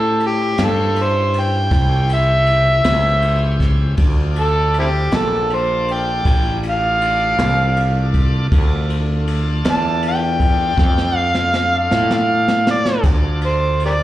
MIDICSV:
0, 0, Header, 1, 5, 480
1, 0, Start_track
1, 0, Key_signature, -1, "minor"
1, 0, Tempo, 754717
1, 2540, Time_signature, 12, 3, 24, 8
1, 8924, End_track
2, 0, Start_track
2, 0, Title_t, "Harmonica"
2, 0, Program_c, 0, 22
2, 0, Note_on_c, 0, 69, 91
2, 147, Note_off_c, 0, 69, 0
2, 168, Note_on_c, 0, 67, 94
2, 409, Note_on_c, 0, 69, 98
2, 418, Note_off_c, 0, 67, 0
2, 650, Note_on_c, 0, 72, 90
2, 659, Note_off_c, 0, 69, 0
2, 891, Note_on_c, 0, 79, 94
2, 900, Note_off_c, 0, 72, 0
2, 1341, Note_off_c, 0, 79, 0
2, 1359, Note_on_c, 0, 76, 109
2, 2284, Note_off_c, 0, 76, 0
2, 2801, Note_on_c, 0, 69, 108
2, 3024, Note_off_c, 0, 69, 0
2, 3046, Note_on_c, 0, 60, 65
2, 3046, Note_on_c, 0, 64, 65
2, 3046, Note_on_c, 0, 67, 92
2, 3096, Note_off_c, 0, 64, 0
2, 3103, Note_off_c, 0, 60, 0
2, 3285, Note_on_c, 0, 69, 94
2, 3294, Note_off_c, 0, 67, 0
2, 3527, Note_on_c, 0, 72, 90
2, 3537, Note_off_c, 0, 69, 0
2, 3773, Note_on_c, 0, 79, 104
2, 3782, Note_off_c, 0, 72, 0
2, 4223, Note_off_c, 0, 79, 0
2, 4259, Note_on_c, 0, 77, 119
2, 5174, Note_off_c, 0, 77, 0
2, 6176, Note_on_c, 0, 81, 105
2, 6391, Note_off_c, 0, 81, 0
2, 6413, Note_on_c, 0, 79, 110
2, 7106, Note_off_c, 0, 79, 0
2, 7106, Note_on_c, 0, 77, 110
2, 7500, Note_off_c, 0, 77, 0
2, 7500, Note_on_c, 0, 77, 97
2, 7712, Note_off_c, 0, 77, 0
2, 7721, Note_on_c, 0, 77, 85
2, 8058, Note_off_c, 0, 77, 0
2, 8083, Note_on_c, 0, 74, 102
2, 8303, Note_off_c, 0, 74, 0
2, 8561, Note_on_c, 0, 72, 101
2, 8782, Note_off_c, 0, 72, 0
2, 8812, Note_on_c, 0, 67, 60
2, 8812, Note_on_c, 0, 70, 60
2, 8812, Note_on_c, 0, 74, 86
2, 8853, Note_off_c, 0, 70, 0
2, 8857, Note_off_c, 0, 67, 0
2, 8924, Note_off_c, 0, 74, 0
2, 8924, End_track
3, 0, Start_track
3, 0, Title_t, "Tonewheel organ"
3, 0, Program_c, 1, 16
3, 0, Note_on_c, 1, 61, 75
3, 0, Note_on_c, 1, 64, 70
3, 0, Note_on_c, 1, 67, 71
3, 0, Note_on_c, 1, 72, 68
3, 2512, Note_off_c, 1, 64, 0
3, 2513, Note_off_c, 1, 72, 0
3, 2514, Note_off_c, 1, 67, 0
3, 2516, Note_off_c, 1, 61, 0
3, 2526, Note_on_c, 1, 69, 77
3, 2528, Note_on_c, 1, 65, 72
3, 2531, Note_on_c, 1, 74, 72
3, 2532, Note_on_c, 1, 62, 77
3, 5387, Note_off_c, 1, 69, 0
3, 5388, Note_off_c, 1, 65, 0
3, 5390, Note_off_c, 1, 62, 0
3, 5390, Note_off_c, 1, 74, 0
3, 5421, Note_on_c, 1, 62, 78
3, 5421, Note_on_c, 1, 65, 75
3, 5424, Note_on_c, 1, 69, 75
3, 8272, Note_off_c, 1, 65, 0
3, 8274, Note_off_c, 1, 62, 0
3, 8274, Note_off_c, 1, 69, 0
3, 8293, Note_on_c, 1, 74, 67
3, 8295, Note_on_c, 1, 69, 66
3, 8296, Note_on_c, 1, 62, 65
3, 8296, Note_on_c, 1, 65, 69
3, 8924, Note_off_c, 1, 62, 0
3, 8924, Note_off_c, 1, 65, 0
3, 8924, Note_off_c, 1, 69, 0
3, 8924, Note_off_c, 1, 74, 0
3, 8924, End_track
4, 0, Start_track
4, 0, Title_t, "Fretless electric bass"
4, 0, Program_c, 2, 35
4, 0, Note_on_c, 2, 45, 78
4, 350, Note_off_c, 2, 45, 0
4, 374, Note_on_c, 2, 43, 99
4, 1075, Note_off_c, 2, 43, 0
4, 1090, Note_on_c, 2, 36, 86
4, 1793, Note_off_c, 2, 36, 0
4, 1812, Note_on_c, 2, 37, 90
4, 2515, Note_off_c, 2, 37, 0
4, 2532, Note_on_c, 2, 38, 85
4, 3235, Note_off_c, 2, 38, 0
4, 3258, Note_on_c, 2, 34, 98
4, 3958, Note_off_c, 2, 34, 0
4, 3977, Note_on_c, 2, 33, 92
4, 4677, Note_off_c, 2, 33, 0
4, 4697, Note_on_c, 2, 36, 101
4, 5397, Note_off_c, 2, 36, 0
4, 5417, Note_on_c, 2, 38, 88
4, 6116, Note_off_c, 2, 38, 0
4, 6143, Note_on_c, 2, 40, 102
4, 6839, Note_off_c, 2, 40, 0
4, 6850, Note_on_c, 2, 41, 91
4, 7552, Note_off_c, 2, 41, 0
4, 7581, Note_on_c, 2, 45, 102
4, 8277, Note_off_c, 2, 45, 0
4, 8291, Note_on_c, 2, 38, 84
4, 8924, Note_off_c, 2, 38, 0
4, 8924, End_track
5, 0, Start_track
5, 0, Title_t, "Drums"
5, 126, Note_on_c, 9, 51, 60
5, 190, Note_off_c, 9, 51, 0
5, 366, Note_on_c, 9, 51, 81
5, 373, Note_on_c, 9, 38, 106
5, 430, Note_off_c, 9, 51, 0
5, 436, Note_off_c, 9, 38, 0
5, 609, Note_on_c, 9, 51, 63
5, 673, Note_off_c, 9, 51, 0
5, 850, Note_on_c, 9, 51, 66
5, 913, Note_off_c, 9, 51, 0
5, 1087, Note_on_c, 9, 51, 90
5, 1089, Note_on_c, 9, 36, 110
5, 1093, Note_on_c, 9, 38, 34
5, 1150, Note_off_c, 9, 51, 0
5, 1153, Note_off_c, 9, 36, 0
5, 1157, Note_off_c, 9, 38, 0
5, 1331, Note_on_c, 9, 51, 71
5, 1395, Note_off_c, 9, 51, 0
5, 1566, Note_on_c, 9, 51, 67
5, 1630, Note_off_c, 9, 51, 0
5, 1806, Note_on_c, 9, 51, 82
5, 1812, Note_on_c, 9, 38, 107
5, 1870, Note_off_c, 9, 51, 0
5, 1876, Note_off_c, 9, 38, 0
5, 2048, Note_on_c, 9, 51, 63
5, 2111, Note_off_c, 9, 51, 0
5, 2290, Note_on_c, 9, 36, 76
5, 2290, Note_on_c, 9, 51, 61
5, 2296, Note_on_c, 9, 38, 33
5, 2353, Note_off_c, 9, 51, 0
5, 2354, Note_off_c, 9, 36, 0
5, 2360, Note_off_c, 9, 38, 0
5, 2526, Note_on_c, 9, 51, 77
5, 2531, Note_on_c, 9, 36, 109
5, 2589, Note_off_c, 9, 51, 0
5, 2595, Note_off_c, 9, 36, 0
5, 2771, Note_on_c, 9, 51, 62
5, 2835, Note_off_c, 9, 51, 0
5, 3014, Note_on_c, 9, 51, 65
5, 3077, Note_off_c, 9, 51, 0
5, 3253, Note_on_c, 9, 51, 75
5, 3259, Note_on_c, 9, 38, 104
5, 3317, Note_off_c, 9, 51, 0
5, 3323, Note_off_c, 9, 38, 0
5, 3498, Note_on_c, 9, 51, 62
5, 3562, Note_off_c, 9, 51, 0
5, 3740, Note_on_c, 9, 51, 64
5, 3804, Note_off_c, 9, 51, 0
5, 3977, Note_on_c, 9, 36, 106
5, 3978, Note_on_c, 9, 51, 78
5, 3984, Note_on_c, 9, 38, 32
5, 4041, Note_off_c, 9, 36, 0
5, 4042, Note_off_c, 9, 51, 0
5, 4048, Note_off_c, 9, 38, 0
5, 4217, Note_on_c, 9, 51, 64
5, 4281, Note_off_c, 9, 51, 0
5, 4460, Note_on_c, 9, 51, 67
5, 4524, Note_off_c, 9, 51, 0
5, 4696, Note_on_c, 9, 51, 82
5, 4703, Note_on_c, 9, 38, 111
5, 4760, Note_off_c, 9, 51, 0
5, 4766, Note_off_c, 9, 38, 0
5, 4938, Note_on_c, 9, 51, 64
5, 5001, Note_off_c, 9, 51, 0
5, 5177, Note_on_c, 9, 36, 78
5, 5178, Note_on_c, 9, 51, 63
5, 5241, Note_off_c, 9, 36, 0
5, 5242, Note_off_c, 9, 51, 0
5, 5418, Note_on_c, 9, 36, 111
5, 5420, Note_on_c, 9, 51, 89
5, 5481, Note_off_c, 9, 36, 0
5, 5483, Note_off_c, 9, 51, 0
5, 5659, Note_on_c, 9, 51, 61
5, 5722, Note_off_c, 9, 51, 0
5, 5898, Note_on_c, 9, 51, 66
5, 5962, Note_off_c, 9, 51, 0
5, 6134, Note_on_c, 9, 51, 84
5, 6140, Note_on_c, 9, 38, 106
5, 6197, Note_off_c, 9, 51, 0
5, 6204, Note_off_c, 9, 38, 0
5, 6375, Note_on_c, 9, 51, 67
5, 6439, Note_off_c, 9, 51, 0
5, 6614, Note_on_c, 9, 36, 77
5, 6617, Note_on_c, 9, 51, 65
5, 6678, Note_off_c, 9, 36, 0
5, 6680, Note_off_c, 9, 51, 0
5, 6854, Note_on_c, 9, 36, 114
5, 6862, Note_on_c, 9, 38, 64
5, 6917, Note_off_c, 9, 36, 0
5, 6926, Note_off_c, 9, 38, 0
5, 6982, Note_on_c, 9, 38, 57
5, 7046, Note_off_c, 9, 38, 0
5, 7216, Note_on_c, 9, 38, 65
5, 7280, Note_off_c, 9, 38, 0
5, 7338, Note_on_c, 9, 38, 77
5, 7402, Note_off_c, 9, 38, 0
5, 7577, Note_on_c, 9, 38, 81
5, 7640, Note_off_c, 9, 38, 0
5, 7700, Note_on_c, 9, 38, 79
5, 7764, Note_off_c, 9, 38, 0
5, 7939, Note_on_c, 9, 38, 78
5, 8003, Note_off_c, 9, 38, 0
5, 8058, Note_on_c, 9, 38, 95
5, 8121, Note_off_c, 9, 38, 0
5, 8177, Note_on_c, 9, 38, 92
5, 8240, Note_off_c, 9, 38, 0
5, 8290, Note_on_c, 9, 49, 93
5, 8292, Note_on_c, 9, 36, 104
5, 8353, Note_off_c, 9, 49, 0
5, 8355, Note_off_c, 9, 36, 0
5, 8531, Note_on_c, 9, 51, 58
5, 8594, Note_off_c, 9, 51, 0
5, 8775, Note_on_c, 9, 51, 62
5, 8838, Note_off_c, 9, 51, 0
5, 8924, End_track
0, 0, End_of_file